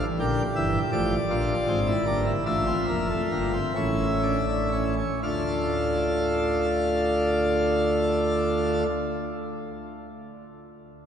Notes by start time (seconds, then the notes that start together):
0.02 E3
0.20 A#1 A#2 D3 G4 G5
0.56 G1 G2 E3 E5
0.92 A1 A2 F3 D5
1.30 A#1 A#2 D4 F4
1.68 G#1 G#2 C4
1.87 E4
2.06 G1 G2 A#3 D4
2.26 E4
2.46 A1 A2 D4 F4 E5
2.67 C4
2.88 F1 F2 A#3
3.10 A3
3.31 G1 G2 A#3
3.53 C4
3.76 A1 A2 C#4 E4
4.23 D4
4.48 D4
4.72 C#4 E4
4.97 C#4
5.23 D2 D3 A3 D4 F4 A4 F5